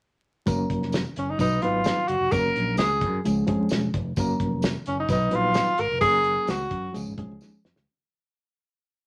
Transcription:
0.46 F#1 F#3 A#3 C#4 A#4, kick, closed hi-hat, tambourine
0.70 F1, kick, closed hi-hat
0.82 snare
0.92 snare, closed hi-hat, tambourine
1.16 F#1 C#4, closed hi-hat
1.30 D#4
1.38 B1 F#3 B3 D#4 B4, kick, closed hi-hat, tambourine
1.62 G#1 F#3 B3 D#4 F4 B4, closed hi-hat
1.84 snare, closed hi-hat, tambourine
2.08 F#1 F#4, closed hi-hat
2.20 F1
2.31 F#1 F#3 A#3 C#4 G#4 A#4, kick, closed hi-hat, tambourine
2.39 A#4
2.56 A#1, closed hi-hat
2.77 C#2 G#4, snare, closed hi-hat, tambourine
3.01 F#2, kick, closed hi-hat
3.24 C#2 F3 G#3 C#4 G#4, closed hi-hat, tambourine
3.47 F2 F3 G#3 C#4 G#4, kick, closed hi-hat
3.69 E1, snare, closed hi-hat, tambourine
3.94 F1, kick, closed hi-hat
4.16 F#1 F#3 A#3 C#4 A#4, kick, closed hi-hat, tambourine
4.40 F1, kick, closed hi-hat
4.62 snare, closed hi-hat, tambourine
4.86 F#1 C#4, closed hi-hat
5.00 D#4
5.08 B1 F#3 B3 D#4 B4, kick, closed hi-hat, tambourine
5.31 A#1 F#3 B3 D#4 B4, closed hi-hat
5.35 F4
5.54 snare, closed hi-hat, tambourine
5.78 G#1 A#4, closed hi-hat
5.91 F1
6.01 F#1 F#3 A#3 C#4 G#4 A4, kick, closed hi-hat, tambourine
6.08 A#4
6.24 closed hi-hat
6.47 C#2 F#4, snare, closed hi-hat, tambourine
6.71 F#2, kick, closed hi-hat
6.92 C#2 F3 G#3 C#4 G#4, closed hi-hat, tambourine
7.07 G#1
7.17 B1 D#3 G#3 C#4 G#4, kick, closed hi-hat
7.23 F3
7.31 C#2
7.41 D#2, snare, tambourine
7.65 F2, snare
7.76 C#2, snare

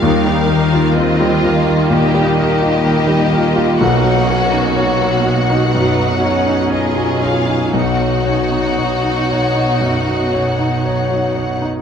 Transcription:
Already playing: A#3 D#4 F4 A#4 F5
0.02 D#2 D#3 G3 D#4 A#4
0.25 G3
0.49 A#3 D#4 A#4
0.73 F4
0.96 C4 F4 A#4 D#5
1.20 G3
1.44 A#3 F4 A#4
1.68 F4
1.90 A#2 A#3 D#4 G4 D#5
2.14 G3
2.39 D#4 G4 A#4
2.62 F4
2.85 A#3 D#4 A#4
3.07 G3
3.31 F4 A#4
3.56 F4
3.80 B1 B2 D#4 F#4 F#5
4.04 F#3
4.27 C#4 C#5
4.51 D#4
4.77 F#4 C#5 F#5
5.01 F#3
5.26 D#4 C#5
5.50 D#4
5.74 F#2 F#3 B3 D#4
5.98 F#3
6.21 C#4 C#5
6.47 D#4
6.71 F4 G#4 C#5 D#5
6.95 F#3
7.22 D#4 C#5 F5
7.46 D#4
7.73 B1 B2 D#4 F#4 F#5
8.00 F#3
8.26 C#4 C#5
8.52 D#4
8.78 C#5
9.04 F#3
9.30 D#4 C#5
9.55 D#4
9.81 F#2 F#3
10.07 F#3
10.33 C#4 C#5
10.59 D#4
10.85 C#5
11.10 F#3
11.36 D#4 C#5
11.62 D#4

